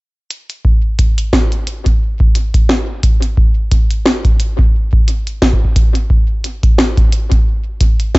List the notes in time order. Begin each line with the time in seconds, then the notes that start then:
0.31 closed hi-hat
0.50 closed hi-hat
0.65 kick
0.99 kick, closed hi-hat
1.18 closed hi-hat
1.33 kick, snare
1.52 closed hi-hat
1.67 closed hi-hat
1.86 kick, closed hi-hat
2.20 kick
2.35 closed hi-hat
2.54 kick, closed hi-hat
2.69 snare
3.03 kick, closed hi-hat
3.22 closed hi-hat
3.37 kick
3.71 kick, closed hi-hat
3.91 closed hi-hat
4.06 snare
4.25 kick, closed hi-hat
4.40 closed hi-hat
4.59 kick
4.93 kick
5.08 closed hi-hat
5.27 closed hi-hat
5.42 kick, snare
5.53 kick
5.65 kick
5.76 kick, closed hi-hat
5.95 closed hi-hat
6.10 kick
6.44 closed hi-hat
6.63 kick, closed hi-hat
6.78 snare
6.97 kick, closed hi-hat
7.12 closed hi-hat
7.32 kick, closed hi-hat
7.81 kick, closed hi-hat
8.00 closed hi-hat
8.15 kick, snare